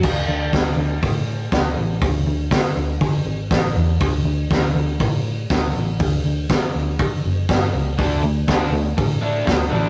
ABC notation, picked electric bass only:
X:1
M:4/4
L:1/8
Q:1/4=121
K:D
V:1 name="Picked electric bass" clef=bass
D,, D,, D,, D,, A,,2 D,, A,,, | D,, D,, D, D,, D, ^G,,, A,,, E,, | D,, D,, D,, D,, A,,2 D,, A,,, | D,, D,, D, D,, D, F,,, G,,, C,, |
D,, D,, D,, D,, A,,2 D,, A,,, |]